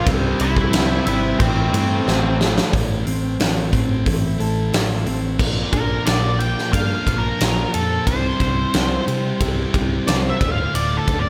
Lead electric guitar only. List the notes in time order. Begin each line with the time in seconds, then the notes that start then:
0.41 E4 E5
1.05 E4 E5
1.38 C4 C5
5.73 A#4
6.06 D5
6.39 G5
6.73 F5
7.18 A#4
7.74 A4
8.07 C5
10.07 D5
10.30 E5
10.52 F5
10.75 D5
10.97 A4
11.19 D5